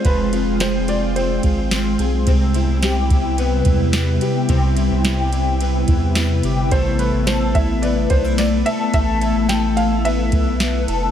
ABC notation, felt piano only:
X:1
M:4/4
L:1/8
Q:1/4=108
K:C
V:1 name="Felt piano"
B2 c d c3 z | z8 | z8 | c B c e d c d e |
e2 g f e3 z |]